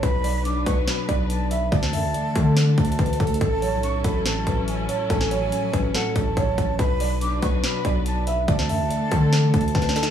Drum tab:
HH |x-----o-----x-----x-----x-----x-----x-----x-----|x-----o-----x-----x-----x-----x-x-x-x-x-x-x-x-x-|x-----o-----x-----x-----x-----x-----x-----x-----|x-----x-----x-----x-----x-----x-----x-----x-----|
SD |------------------------o-----------------------|---o--------------------o-----------------------|------------------------o-----------------------|---o--------------------o-----------------------|
BD |o-----------------o-----------o-----------------|o-----------------o-----------o-----o-----o-----|o-----------------o-----------o-----------------|o-----------------o-----------o-----o-----o-----|

HH |x-----o-----x-----x-----x-----x-----x-----x-----|x-----o-----x-----x-----x-----x-x-x-x-x-x-x-x---|
SD |------------------------o-----------------------|---o--------------------o-----------o-o-o-o-o---|
BD |o-----------------o-----------o-----------------|o-----------------o-----------o-----o-----------|